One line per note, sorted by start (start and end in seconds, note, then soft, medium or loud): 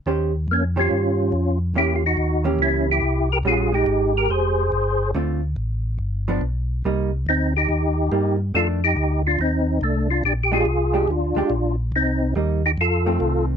0.06 0.47 D#2 medium
0.06 0.31 D#3 medium
0.06 0.31 C#4 medium
0.06 0.31 G4 medium
0.06 0.32 C5 medium
0.48 0.89 F2 medium
0.48 0.63 A#3 medium
0.53 0.65 C#4 medium
0.76 1.30 D#3 medium
0.76 1.30 C#4 medium
0.76 1.58 C#4 medium
0.76 1.31 G4 medium
0.76 1.31 C5 medium
0.80 1.59 F4 medium
0.91 1.32 G2 medium
1.32 1.74 F2 medium
1.74 2.16 E2 medium
1.74 2.00 E3 medium
1.74 2.01 A#3 medium
1.74 2.01 C#4 medium
1.74 1.94 E4 medium
1.74 2.01 G4 medium
1.74 1.96 G4 medium
1.96 2.04 F4 medium
2.06 2.44 D#4 medium
2.06 2.44 F#4 medium
2.17 2.58 D#2 medium
2.44 2.99 E3 medium
2.44 2.99 A#3 medium
2.44 2.99 C#4 medium
2.44 3.00 G4 medium
2.59 3.01 C#2 medium
2.59 2.87 C#4 medium
2.59 2.90 E4 loud
2.91 3.29 E4 medium
2.91 3.32 G4 loud
3.02 3.43 C2 loud
3.32 3.39 G4 medium
3.32 3.38 A#4 loud
3.43 3.85 A#1 medium
3.43 3.70 G3 medium
3.43 3.70 C#4 medium
3.43 3.70 F#4 medium
3.43 3.75 G#4 medium
3.48 3.72 F4 medium
3.72 4.63 G#3 medium
3.72 4.13 D#4 medium
3.72 4.64 G4 medium
3.72 4.17 G4 loud
3.86 4.28 G#1 loud
4.17 4.30 G4 medium
4.17 4.31 A#4 medium
4.29 4.70 F1 medium
4.29 5.11 G#4 medium
4.29 5.11 C5 loud
4.72 5.13 G1 loud
5.15 5.56 D2 medium
5.15 5.39 D3 medium
5.15 5.40 A3 medium
5.15 5.40 C4 medium
5.15 5.40 F4 medium
5.56 5.98 A1 medium
5.99 6.40 G1 medium
6.28 6.41 F3 medium
6.28 6.41 B3 medium
6.28 6.41 D4 medium
6.41 6.82 B1 medium
6.84 7.25 C2 medium
6.84 7.10 G3 medium
6.84 7.10 A#3 medium
6.84 7.10 D#4 medium
7.26 7.68 D2 loud
7.26 7.54 C4 medium
7.26 7.53 D#4 medium
7.57 8.37 D#4 medium
7.57 8.36 G4 medium
7.69 8.10 D#2 medium
8.12 8.52 G2 loud
8.12 8.37 G3 soft
8.12 8.37 A#3 medium
8.12 8.37 D#4 soft
8.54 8.95 F2 medium
8.54 8.79 D#3 medium
8.54 8.79 A3 medium
8.54 8.80 D4 medium
8.54 8.68 F4 medium
8.54 8.67 A4 loud
8.84 9.23 D#4 medium
8.84 9.22 G4 medium
8.97 9.37 D2 loud
9.27 9.39 D4 medium
9.27 9.40 F4 medium
9.39 9.80 D#2 medium
9.39 9.79 C4 medium
9.39 9.83 D#4 medium
9.81 10.22 C2 loud
9.81 10.08 A3 medium
9.81 10.10 D4 medium
10.11 10.24 D4 medium
10.11 10.23 F4 medium
10.24 10.65 A#1 medium
10.24 10.34 D4 medium
10.24 10.33 G4 medium
10.44 10.52 G4 medium
10.52 10.64 G#3 medium
10.52 10.65 D4 medium
10.52 11.05 F4 medium
10.52 10.65 G4 medium
10.52 11.11 G#4 loud
10.65 11.07 C2 loud
10.94 11.07 G#3 medium
10.94 11.07 D4 medium
10.94 11.07 G4 medium
11.08 11.34 D2 medium
11.08 11.76 D4 medium
11.08 11.75 F4 medium
11.35 11.43 D2 soft
11.35 11.49 G#3 medium
11.35 11.50 D4 medium
11.35 11.50 G4 medium
11.50 11.91 A#1 medium
11.92 12.34 C2 medium
11.92 12.34 D#4 medium
11.96 12.34 C4 medium
12.35 12.77 D#2 loud
12.35 12.61 G3 medium
12.35 12.61 A#3 soft
12.35 12.61 D#4 medium
12.66 12.72 D#4 medium
12.66 12.72 G4 medium
12.78 13.19 F2 medium
12.78 13.46 F4 medium
12.78 13.46 A4 medium
13.06 13.57 D#3 medium
13.06 13.57 A3 medium
13.06 13.57 C4 medium
13.20 13.57 C2 loud